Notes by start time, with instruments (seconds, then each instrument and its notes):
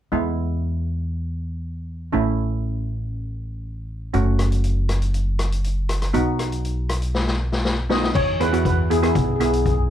0.12 upright bass E2, steel pan G#3 B3 E4
2.12 upright bass A1, steel pan A3 C#4 E4
4.14 upright bass F#1, steel pan A3 C#4 F#4, closed hi-hat
4.39 cross-stick, closed hi-hat
4.52 closed hi-hat
4.64 closed hi-hat
4.89 cross-stick, closed hi-hat
5.02 closed hi-hat
5.14 closed hi-hat
5.39 cross-stick, closed hi-hat
5.52 closed hi-hat
5.64 closed hi-hat
5.89 cross-stick, closed hi-hat
6.02 cross-stick, closed hi-hat
6.13 upright bass B1, steel pan B3 D#4 F#4, closed hi-hat
6.39 cross-stick, closed hi-hat
6.52 closed hi-hat
6.65 closed hi-hat
6.89 cross-stick, closed hi-hat
7.02 closed hi-hat
7.14 snare
7.27 snare
7.52 snare
7.65 snare
7.90 steel pan B3 D#4 F#4 D#5, snare
8.03 snare
8.15 upright bass E2, steel pan C#5, kick, crash
8.40 steel pan B3 E4 G#4 B4, cross-stick, closed hi-hat
8.52 steel pan B3 E4 F#4, closed hi-hat
8.65 steel pan B4, kick, closed hi-hat
8.90 steel pan B3 E4 G#4, closed hi-hat
8.98 steel pan G#4
9.03 steel pan B3 E4 G#4, cross-stick, closed hi-hat
9.13 upright bass B1, steel pan G#4, kick, closed hi-hat
9.21 steel pan G#4
9.28 steel pan G#4
9.36 steel pan G#4
9.40 steel pan B3 E4 G#4, cross-stick, closed hi-hat
9.50 steel pan G#4, closed hi-hat
9.58 steel pan G#4
9.66 steel pan G#4, kick, closed hi-hat
9.75 steel pan G#4